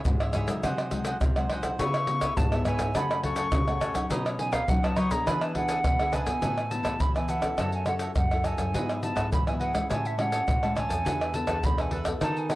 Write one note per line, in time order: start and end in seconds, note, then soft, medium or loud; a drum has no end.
0.05 0.31 G#2 loud
0.05 0.62 G#2 soft
0.05 0.45 E3 medium
0.05 0.46 G#3 medium
0.05 0.46 C#4 medium
0.05 pandeiro medium
0.05 shaker medium
0.05 surdo loud
0.20 0.33 G#4 soft
0.20 0.34 C#5 soft
0.20 0.34 E5 medium
0.20 pandeiro soft
0.20 tamborim medium
0.20 shaker soft
0.33 0.47 G#2 medium
0.33 0.48 E4 medium
0.33 0.48 G#4 medium
0.33 0.47 C#5 medium
0.33 0.47 E5 medium
0.33 pandeiro medium
0.33 tamborim medium
0.33 shaker medium
0.47 0.61 C#3 medium
0.47 0.87 F#3 medium
0.47 0.88 G#3 medium
0.47 0.88 D#4 medium
0.47 0.63 G#4 soft
0.47 0.62 C#5 soft
0.47 0.62 E5 medium
0.47 pandeiro medium
0.47 shaker medium
0.47 surdo soft
0.63 1.19 C3 medium
0.63 1.13 C3 medium
0.63 0.92 F#4 medium
0.63 0.92 G#4 medium
0.63 0.92 C5 medium
0.63 0.92 F#5 medium
0.63 pandeiro medium
0.63 tamborim medium
0.63 shaker medium
0.63 surdo medium
0.78 pandeiro soft
0.78 tamborim medium
0.78 shaker soft
0.91 1.19 F#3 medium
0.91 1.19 G#3 medium
0.91 1.20 D#4 medium
0.91 1.05 F#4 soft
0.91 1.06 G#4 soft
0.91 1.06 C5 soft
0.91 1.06 F#5 soft
0.91 pandeiro medium
0.91 shaker medium
0.91 surdo soft
1.05 1.16 F#4 medium
1.05 1.16 G#4 medium
1.05 1.16 C5 medium
1.05 1.16 F#5 medium
1.05 pandeiro medium
1.05 shaker medium
1.21 1.76 C3 medium
1.21 1.46 C3 loud
1.21 pandeiro medium
1.21 tamborim medium
1.21 shaker medium
1.21 surdo loud
1.36 1.77 F#3 medium
1.36 1.77 G#3 medium
1.36 1.78 D#4 medium
1.36 1.51 G#4 soft
1.36 1.50 C5 soft
1.36 1.50 F#5 soft
1.36 pandeiro soft
1.36 tamborim medium
1.36 shaker soft
1.50 1.64 F#4 medium
1.50 1.65 G#4 medium
1.50 1.64 C5 medium
1.50 1.63 F#5 medium
1.50 pandeiro medium
1.50 tamborim medium
1.50 surdo soft
1.63 1.79 G#4 soft
1.63 1.79 C5 medium
1.63 1.78 F#5 medium
1.63 pandeiro medium
1.63 shaker medium
1.63 surdo soft
1.79 2.34 C#3 medium
1.79 2.29 C#3 loud
1.79 2.04 B3 medium
1.79 2.04 E4 medium
1.79 1.93 E4 medium
1.79 2.04 G#4 medium
1.79 1.94 B4 medium
1.79 1.94 C#5 medium
1.79 1.94 E5 medium
1.79 2.38 C#6 loud
1.79 pandeiro medium
1.79 shaker medium
1.79 surdo medium
1.94 2.22 B4 soft
1.94 2.22 C#5 soft
1.94 2.23 E5 medium
1.94 pandeiro soft
1.94 tamborim medium
1.94 shaker soft
2.07 2.47 B3 medium
2.07 2.47 E4 medium
2.07 2.47 G#4 medium
2.07 pandeiro medium
2.21 2.32 E4 medium
2.21 2.32 B4 medium
2.21 2.32 C#5 medium
2.21 2.32 E5 medium
2.21 pandeiro medium
2.21 tamborim medium
2.21 shaker medium
2.21 surdo soft
2.37 2.92 G#2 medium
2.37 2.62 G#2 medium
2.37 2.66 A5 medium
2.37 pandeiro medium
2.37 shaker medium
2.37 surdo loud
2.52 2.91 B3 medium
2.52 2.91 E4 medium
2.52 2.91 G#4 medium
2.52 2.66 B4 soft
2.52 2.66 C#5 medium
2.52 2.66 E5 medium
2.52 pandeiro soft
2.52 tamborim medium
2.52 shaker soft
2.65 2.78 G#2 medium
2.65 2.80 E4 medium
2.65 2.80 B4 medium
2.65 2.80 C#5 medium
2.65 2.80 E5 medium
2.65 2.98 G#5 medium
2.65 pandeiro medium
2.65 tamborim medium
2.65 shaker medium
2.79 2.92 G#2 medium
2.79 2.95 B4 soft
2.79 2.94 C#5 soft
2.79 2.94 E5 medium
2.79 pandeiro medium
2.79 shaker medium
2.79 surdo soft
2.95 3.50 F#2 medium
2.95 3.44 C#3 medium
2.95 3.19 C#3 medium
2.95 3.20 F#3 medium
2.95 3.20 A3 medium
2.95 3.20 C#4 medium
2.95 3.22 A4 medium
2.95 3.20 A4 medium
2.95 3.23 C#5 medium
2.95 3.23 F#5 medium
2.95 3.24 G#5 medium
2.95 3.24 B5 medium
2.95 pandeiro medium
2.95 tamborim medium
2.95 shaker medium
2.95 surdo medium
3.11 pandeiro soft
3.11 tamborim medium
3.11 shaker soft
3.23 3.63 C#3 medium
3.23 3.63 F#3 medium
3.23 3.63 A3 medium
3.23 3.63 C#4 medium
3.23 3.35 A4 soft
3.23 3.63 A4 medium
3.23 3.36 C#5 soft
3.23 3.36 F#5 medium
3.23 3.36 G#5 soft
3.23 4.07 C#6 loud
3.23 pandeiro medium
3.23 surdo soft
3.36 3.47 A4 medium
3.36 3.47 C#5 medium
3.36 3.47 F#5 medium
3.36 3.47 G#5 medium
3.36 pandeiro medium
3.36 shaker medium
3.52 4.08 F#2 medium
3.52 3.77 C#3 loud
3.52 pandeiro medium
3.52 tamborim medium
3.52 shaker medium
3.52 surdo loud
3.68 3.92 C#3 medium
3.68 3.92 F#3 medium
3.68 3.92 A3 medium
3.68 3.93 C#4 medium
3.68 3.93 A4 medium
3.68 3.80 C#5 soft
3.68 3.81 F#5 soft
3.68 3.81 G#5 medium
3.68 pandeiro soft
3.68 tamborim medium
3.68 shaker soft
3.81 3.95 A4 medium
3.81 3.95 C#5 medium
3.81 3.94 F#5 medium
3.81 3.93 G#5 medium
3.81 pandeiro medium
3.81 tamborim medium
3.81 shaker medium
3.81 surdo soft
3.94 4.34 F#3 medium
3.94 4.35 C#4 medium
3.94 4.35 D#4 medium
3.94 4.10 C#5 soft
3.94 4.09 F#5 soft
3.94 4.09 G#5 medium
3.94 pandeiro medium
3.94 shaker medium
3.94 surdo soft
4.10 4.60 B2 loud
4.10 4.66 B2 medium
4.10 4.24 D#4 medium
4.10 4.24 B4 medium
4.10 4.24 C#5 medium
4.10 4.24 D#5 medium
4.10 pandeiro medium
4.10 shaker medium
4.10 surdo medium
4.25 4.51 B4 soft
4.25 4.52 C#5 medium
4.25 4.52 D#5 medium
4.25 pandeiro soft
4.25 tamborim medium
4.25 shaker soft
4.39 4.57 F#3 medium
4.39 4.57 C#4 medium
4.39 4.57 D#4 medium
4.39 4.54 G#5 loud
4.39 pandeiro medium
4.52 4.62 D#4 medium
4.52 4.62 B4 medium
4.52 4.63 C#5 medium
4.52 4.63 D#5 medium
4.52 4.71 F5 medium
4.52 pandeiro medium
4.52 tamborim medium
4.52 shaker medium
4.52 surdo soft
4.68 4.93 F#3 loud
4.68 5.24 F#3 medium
4.68 4.97 C#4 medium
4.68 4.97 D#4 medium
4.68 4.86 F#5 medium
4.68 pandeiro medium
4.68 shaker medium
4.68 surdo loud
4.83 4.96 B4 soft
4.83 4.96 C#5 medium
4.83 4.96 D#5 medium
4.83 4.98 A5 medium
4.83 pandeiro soft
4.83 tamborim medium
4.83 shaker soft
4.96 5.09 F#3 medium
4.96 5.11 D#4 medium
4.96 5.11 B4 medium
4.96 5.10 C#5 medium
4.96 5.09 D#5 medium
4.96 5.13 C#6 loud
4.96 pandeiro medium
4.96 tamborim medium
4.96 shaker medium
5.11 5.24 B2 medium
5.11 5.51 B3 medium
5.11 5.51 D4 medium
5.11 5.51 G#4 medium
5.11 5.26 B4 soft
5.11 5.25 C#5 medium
5.11 5.25 D#5 medium
5.11 5.29 A#5 loud
5.11 pandeiro medium
5.11 shaker medium
5.11 surdo soft
5.26 5.75 E3 medium
5.26 5.83 E3 medium
5.26 5.53 D4 medium
5.26 5.54 G#4 medium
5.26 5.55 B4 medium
5.26 5.55 E5 medium
5.26 5.44 B5 medium
5.26 pandeiro medium
5.26 tamborim medium
5.26 shaker medium
5.26 surdo medium
5.41 5.55 A5 medium
5.41 pandeiro soft
5.41 tamborim medium
5.41 shaker soft
5.55 5.83 B3 medium
5.55 5.67 D4 soft
5.55 5.83 D4 medium
5.55 5.68 G#4 soft
5.55 5.83 G#4 medium
5.55 5.68 B4 medium
5.55 5.69 E5 soft
5.55 6.15 F#5 loud
5.55 pandeiro medium
5.55 surdo soft
5.69 5.78 D4 medium
5.69 5.79 G#4 medium
5.69 5.79 B4 medium
5.69 5.79 E5 medium
5.69 pandeiro medium
5.69 shaker medium
5.84 6.40 B2 medium
5.84 5.97 E3 loud
5.84 pandeiro medium
5.84 tamborim medium
5.84 shaker medium
5.84 surdo loud
5.99 6.12 D3 medium
5.99 6.41 B3 medium
5.99 6.41 D4 medium
5.99 6.41 G#4 medium
5.99 6.12 G#4 soft
5.99 6.12 B4 soft
5.99 6.13 E5 medium
5.99 pandeiro soft
5.99 tamborim medium
5.99 shaker soft
6.12 6.26 C#3 medium
6.12 6.26 D4 medium
6.12 6.27 G#4 medium
6.12 6.26 B4 medium
6.12 6.26 E5 medium
6.12 6.73 G#5 loud
6.12 pandeiro medium
6.12 tamborim medium
6.12 shaker medium
6.12 surdo soft
6.26 6.40 B2 medium
6.26 6.42 G#4 soft
6.26 6.41 B4 medium
6.26 6.41 E5 medium
6.26 pandeiro medium
6.26 shaker medium
6.26 surdo soft
6.42 6.79 A2 medium
6.42 6.98 A2 soft
6.42 6.60 E3 soft
6.42 6.60 B3 medium
6.42 6.56 E4 medium
6.42 6.60 E4 medium
6.42 6.56 A4 medium
6.42 6.56 B4 medium
6.42 6.57 E5 medium
6.42 pandeiro medium
6.42 shaker medium
6.42 surdo medium
6.58 6.83 A4 soft
6.58 6.82 B4 soft
6.58 6.83 E5 soft
6.58 pandeiro soft
6.58 tamborim medium
6.58 shaker soft
6.71 7.01 E3 soft
6.71 7.11 B3 medium
6.71 7.11 E4 medium
6.71 7.02 A5 medium
6.71 pandeiro medium
6.71 shaker medium
6.83 6.97 A2 medium
6.83 6.93 E4 medium
6.83 6.94 A4 medium
6.83 6.94 B4 medium
6.83 6.94 E5 medium
6.83 pandeiro medium
6.83 tamborim medium
6.83 shaker medium
6.83 surdo soft
7.00 7.49 E3 medium
7.00 7.15 E3 soft
7.00 7.15 B5 medium
7.00 pandeiro medium
7.00 shaker medium
7.00 surdo loud
7.14 7.40 E3 medium
7.14 7.40 B3 medium
7.14 7.40 E4 medium
7.14 7.27 A4 soft
7.14 7.28 B4 soft
7.14 7.28 E5 soft
7.14 7.31 G#5 medium
7.14 pandeiro soft
7.14 tamborim medium
7.14 shaker soft
7.28 7.42 E4 medium
7.28 7.42 A4 medium
7.28 7.42 B4 medium
7.28 7.42 E5 medium
7.28 7.61 F#5 medium
7.28 pandeiro medium
7.28 shaker medium
7.42 7.82 C#4 medium
7.42 7.82 E4 medium
7.42 7.82 A4 medium
7.42 7.57 A4 soft
7.42 7.57 B4 soft
7.42 7.57 E5 soft
7.42 pandeiro medium
7.42 tamborim medium
7.42 shaker medium
7.42 surdo soft
7.58 8.07 F#2 medium
7.58 8.14 F#3 medium
7.58 7.85 F#4 medium
7.58 7.86 A4 medium
7.58 7.86 C#5 medium
7.58 7.87 E5 medium
7.58 7.73 A5 medium
7.58 pandeiro medium
7.58 tamborim medium
7.58 shaker medium
7.58 surdo medium
7.72 7.87 G#5 medium
7.72 pandeiro soft
7.72 shaker soft
7.86 8.14 C#4 soft
7.86 8.15 E4 soft
7.86 8.00 F#4 soft
7.86 8.00 A4 soft
7.86 8.15 A4 medium
7.86 8.00 C#5 medium
7.86 8.01 E5 medium
7.86 7.94 F#5 medium
7.86 pandeiro medium
7.86 tamborim medium
7.86 shaker medium
7.99 8.10 F#4 medium
7.99 8.11 A4 medium
7.99 8.11 C#5 medium
7.99 8.11 E5 medium
7.99 pandeiro medium
7.99 shaker medium
8.15 8.53 F#2 medium
8.15 8.72 C#3 medium
8.15 8.47 F#5 medium
8.15 pandeiro medium
8.15 tamborim medium
8.15 shaker medium
8.15 surdo loud
8.31 8.70 C#4 medium
8.31 8.71 E4 medium
8.31 8.44 A4 soft
8.31 8.71 A4 medium
8.31 8.45 C#5 soft
8.31 8.44 E5 soft
8.31 pandeiro soft
8.31 tamborim medium
8.31 shaker soft
8.31 surdo soft
8.44 8.58 F#4 medium
8.44 8.58 A4 medium
8.44 8.58 C#5 medium
8.44 8.57 E5 medium
8.44 9.02 G#5 loud
8.44 pandeiro medium
8.44 tamborim medium
8.44 shaker medium
8.58 8.74 F#2 medium
8.58 8.73 A4 soft
8.58 8.73 C#5 soft
8.58 8.72 E5 soft
8.58 pandeiro medium
8.58 shaker medium
8.58 surdo soft
8.74 9.11 G#2 medium
8.74 9.29 G#2 medium
8.74 8.99 F#3 soft
8.74 8.99 B3 medium
8.74 8.99 E4 medium
8.74 8.88 F#4 medium
8.74 8.88 G#4 medium
8.74 8.88 B4 medium
8.74 8.88 E5 medium
8.74 pandeiro medium
8.74 shaker medium
8.74 surdo medium
8.89 9.15 G#4 soft
8.89 9.15 B4 soft
8.89 9.15 E5 soft
8.89 pandeiro soft
8.89 tamborim medium
8.89 shaker soft
9.03 9.30 F#3 soft
9.03 9.30 B3 soft
9.03 9.31 E4 medium
9.03 9.30 A5 medium
9.03 pandeiro medium
9.03 shaker medium
9.15 9.29 G#2 medium
9.15 9.25 F#4 medium
9.15 9.26 G#4 medium
9.15 9.26 B4 medium
9.15 9.26 E5 medium
9.15 pandeiro medium
9.15 tamborim medium
9.15 shaker medium
9.15 surdo soft
9.32 9.87 G#2 soft
9.32 9.81 E3 medium
9.32 9.46 B5 medium
9.32 pandeiro medium
9.32 shaker medium
9.32 surdo loud
9.47 9.71 F#3 medium
9.47 9.71 B3 medium
9.47 9.71 E4 medium
9.47 9.59 G#4 soft
9.47 9.60 B4 soft
9.47 9.60 E5 soft
9.47 9.54 G#5 medium
9.47 pandeiro soft
9.47 tamborim medium
9.47 shaker soft
9.60 9.73 F#4 medium
9.60 9.74 G#4 medium
9.60 9.73 B4 medium
9.60 9.72 E5 medium
9.60 9.88 F#5 medium
9.60 pandeiro medium
9.73 10.13 G#3 medium
9.73 10.13 C#4 medium
9.73 10.14 E4 medium
9.73 9.88 G#4 soft
9.73 9.88 B4 soft
9.73 9.88 E5 soft
9.73 pandeiro medium
9.73 tamborim medium
9.73 shaker medium
9.73 surdo soft
9.90 10.39 A2 medium
9.90 10.45 A2 medium
9.90 10.17 G#4 medium
9.90 10.17 C#5 medium
9.90 10.18 E5 medium
9.90 10.08 G#5 medium
9.90 10.18 A5 medium
9.90 pandeiro medium
9.90 tamborim medium
9.90 shaker medium
9.90 surdo medium
10.05 10.19 E5 medium
10.05 pandeiro soft
10.05 shaker soft
10.17 10.57 G#3 medium
10.17 10.57 C#4 medium
10.17 10.57 E4 medium
10.17 10.32 G#4 soft
10.17 10.32 C#5 soft
10.17 10.32 E5 soft
10.17 10.73 F#5 medium
10.17 10.33 A5 soft
10.17 pandeiro medium
10.17 tamborim medium
10.32 10.42 G#4 medium
10.32 10.42 C#5 medium
10.32 10.42 E5 medium
10.32 10.42 A5 medium
10.32 pandeiro medium
10.32 shaker medium
10.47 10.84 A2 medium
10.47 11.02 E3 medium
10.47 pandeiro medium
10.47 tamborim medium
10.47 shaker medium
10.47 surdo medium
10.63 11.01 G#3 medium
10.63 11.01 C#4 medium
10.63 11.02 E4 medium
10.63 10.75 C#5 soft
10.63 10.75 E5 soft
10.63 10.75 A5 soft
10.63 pandeiro soft
10.63 tamborim medium
10.63 shaker soft
10.63 surdo soft
10.75 10.89 G#4 medium
10.75 10.89 C#5 medium
10.75 10.88 E5 medium
10.75 11.37 G#5 loud
10.75 10.88 A5 medium
10.75 pandeiro medium
10.75 tamborim medium
10.75 shaker medium
10.75 surdo soft
10.89 11.06 F2 medium
10.89 11.04 C#5 soft
10.89 11.04 E5 soft
10.89 11.03 A5 medium
10.89 pandeiro medium
10.89 shaker medium
10.89 surdo soft
11.05 11.42 E2 medium
11.05 11.61 E3 medium
11.05 11.30 B3 medium
11.05 11.19 D4 medium
11.05 11.30 D4 soft
11.05 11.19 A4 medium
11.05 11.31 A4 medium
11.05 11.19 B4 medium
11.05 11.18 E5 medium
11.05 pandeiro medium
11.05 shaker medium
11.05 surdo medium
11.19 11.46 A4 soft
11.19 11.46 B4 soft
11.19 11.47 E5 soft
11.19 pandeiro soft
11.19 tamborim medium
11.19 shaker soft
11.34 11.59 B3 medium
11.34 11.59 D4 medium
11.34 11.59 A4 medium
11.34 11.67 A5 medium
11.34 pandeiro medium
11.34 shaker medium
11.47 11.61 E2 medium
11.47 11.57 D4 medium
11.47 11.57 A4 medium
11.47 11.57 B4 medium
11.47 11.57 E5 medium
11.47 pandeiro medium
11.47 tamborim medium
11.47 shaker medium
11.47 surdo soft
11.63 12.13 E2 loud
11.63 12.19 B2 soft
11.63 12.03 B3 soft
11.63 12.03 D4 medium
11.63 12.03 A4 medium
11.63 11.82 B5 medium
11.63 pandeiro medium
11.63 shaker medium
11.63 surdo medium
11.78 11.91 A4 soft
11.78 11.91 B4 soft
11.78 11.91 E5 medium
11.78 11.93 G#5 medium
11.78 pandeiro soft
11.78 tamborim medium
11.78 shaker soft
11.91 12.05 D4 medium
11.91 12.05 A4 medium
11.91 12.05 B4 medium
11.91 12.04 E5 medium
11.91 pandeiro medium
12.05 12.46 B3 medium
12.05 12.46 F#4 medium
12.05 12.20 A4 soft
12.05 12.46 A4 medium
12.05 12.20 B4 soft
12.05 12.19 E5 medium
12.05 pandeiro medium
12.05 tamborim medium
12.05 shaker medium
12.05 surdo soft
12.21 12.55 D#3 medium
12.21 12.55 D#3 soft
12.21 12.48 D#4 medium
12.21 12.49 A4 medium
12.21 12.49 B4 medium
12.21 12.50 D#5 medium
12.21 12.40 A5 medium
12.21 pandeiro medium
12.21 tamborim medium
12.21 shaker medium
12.21 surdo medium
12.37 12.53 G#5 medium
12.37 pandeiro soft
12.37 shaker soft
12.49 12.55 B3 medium
12.49 12.55 D#4 soft
12.49 12.55 F#4 medium
12.49 12.55 A4 medium
12.49 12.55 B4 medium
12.49 12.55 D#5 soft
12.49 12.55 F#5 medium
12.49 pandeiro medium
12.49 tamborim medium
12.49 shaker medium